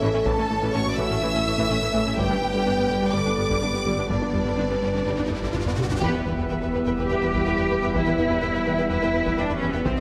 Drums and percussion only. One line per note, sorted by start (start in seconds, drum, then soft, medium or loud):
0.26 taiko medium
1.58 taiko medium
2.18 taiko medium
3.51 taiko medium
4.10 taiko medium
4.34 taiko low-mid medium
5.18 taiko low-mid soft
5.30 taiko low-mid soft
5.42 taiko medium
5.54 taiko low-mid medium
5.66 taiko low-mid medium
5.78 taiko mid medium
5.90 taiko low medium
6.02 taiko loud
6.26 taiko low-mid medium
7.10 taiko low-mid soft
7.22 taiko low-mid medium
7.34 taiko medium
7.59 taiko low-mid medium
7.83 taiko low-mid soft
7.95 taiko medium
8.19 taiko low-mid medium
9.02 taiko low-mid soft
9.14 taiko low-mid medium
9.26 taiko medium
9.50 taiko low-mid soft
9.74 taiko low-mid soft
9.86 taiko loud